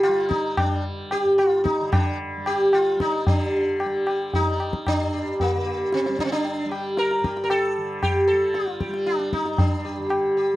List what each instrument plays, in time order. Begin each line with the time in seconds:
Already playing: tanpura G2 D3 G3
0.03 sitar F4, tabla na
0.08 tanpura G3
0.29 sitar D#4, tabla ke
0.57 sitar D4, tabla na, tabla ge
0.66 tanpura G3
1.11 sitar G4, tabla na
1.24 tanpura G2
1.38 sitar F4, tabla na
1.64 sitar D#4, tabla ke
1.80 tanpura D3
1.92 sitar D4, tabla na, tabla ge
2.37 tanpura G3
2.46 sitar G4, tabla na
2.73 sitar F4, tabla na
2.96 tanpura G3, tabla ke
3.01 sitar D#4
3.27 tanpura D3, sitar D4 G4, tabla tin, tabla ge
3.80 sitar G4, tabla na
3.85 tanpura G3
4.07 sitar G4, tabla na
4.33 sitar D#4, tabla tin, tabla ge
4.40 tanpura G3
4.60 tabla na
4.73 tabla ke
4.87 sitar D4, tabla na, tabla ge
4.98 tanpura G2
5.14 sitar G4
5.40 sitar A#3, tabla tin, tabla ge
5.54 tanpura D3
5.66 sitar G4
5.92 sitar C4, tabla te
6.06 tanpura G3, tabla te
6.19 sitar D4, tabla ke
6.25 sitar C4
6.32 sitar D4, tabla te
6.45 tabla tin
6.65 tanpura G3
6.71 sitar G4, tabla na
6.97 sitar A#4, tabla te
7.11 tabla te
7.20 tanpura G2, sitar G4
7.24 tabla ke
7.37 tabla te
7.44 sitar A#4
7.50 sitar A4, tabla na
7.77 tanpura D3
8.03 sitar G4, tabla na, tabla ge
8.28 sitar A4
8.32 tanpura G3
8.54 sitar F4, tabla te
8.67 tabla te
8.80 sitar G4, tabla ke
8.89 tanpura G3
8.94 tabla te
9.06 sitar D4, tabla te
9.20 tabla te
9.33 sitar D#4, tabla ke
9.43 tanpura G2, tabla te
9.58 sitar D4, tabla tin, tabla ge
9.85 sitar G4
9.98 tanpura D3
10.09 sitar G4, tabla na
10.37 sitar G4